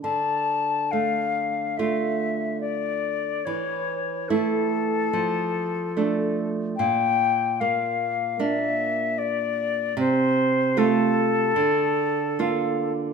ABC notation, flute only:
X:1
M:4/4
L:1/8
Q:1/4=73
K:Dm
V:1 name="Flute"
a2 f2 e2 d2 | ^c2 A4- A z | g2 f2 e2 d2 | c2 A4- A z |]